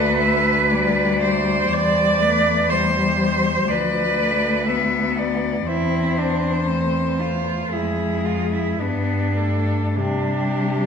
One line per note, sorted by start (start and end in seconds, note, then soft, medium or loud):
0.00 1.68 D2 medium
0.00 0.73 A3 medium
0.00 1.22 B4 medium
0.00 0.21 D5 medium
0.23 0.71 E5 medium
0.71 1.71 G3 medium
0.71 1.74 D5 medium
1.22 1.74 C5 medium
1.72 3.65 E2 medium
1.72 2.23 G3 medium
1.72 2.24 C5 medium
1.72 2.71 D5 medium
2.22 2.72 A3 medium
2.22 2.71 B4 medium
2.70 3.70 G3 medium
2.70 3.70 C5 medium
2.70 3.72 C5 medium
3.68 5.62 D2 soft
3.68 4.20 F3 soft
3.68 5.17 B4 medium
3.68 4.67 D5 medium
4.19 4.70 A3 medium
4.68 5.69 B3 soft
4.68 5.20 E5 soft
5.18 5.69 D5 soft
5.66 7.67 E2 soft
5.66 6.68 C4 soft
5.66 6.19 E4 medium
5.66 7.72 C5 medium
6.18 6.70 D4 medium
6.68 7.74 A3 soft
6.68 7.22 C4 medium
7.20 7.74 F4 medium
7.70 8.78 F2 soft
7.70 8.83 G#3 soft
7.70 8.27 E4 medium
7.70 8.80 G#4 soft
8.25 8.52 F4 medium
8.52 8.82 E4 soft
8.80 9.98 G2 soft
8.80 9.36 B3 soft
8.80 9.96 D4 soft
8.80 9.40 B4 soft
9.37 9.98 A3 soft
9.37 9.98 A4 soft
9.96 10.86 C3 soft
9.96 10.86 G3 soft
9.96 10.86 D4 medium
9.96 10.86 G4 soft